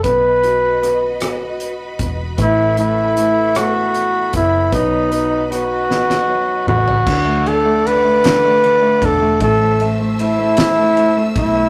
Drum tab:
CC |------------|------------|------------|x-----------|
RD |------------|------------|------------|--x-x-x-x-x-|
HH |x-x-x-x-x-x-|x-x-x-x-x-x-|x-x-x-------|------------|
SD |----r-r-----|------r-----|----r-oo----|------o-----|
T2 |------------|------------|----------o-|------------|
FT |------------|------------|-----------o|------------|
BD |o---------o-|o---------o-|o-----------|o---------o-|

CC |------------|
RD |x-x-x-x-x-x-|
HH |------------|
SD |------o-----|
T2 |------------|
FT |------------|
BD |o---------o-|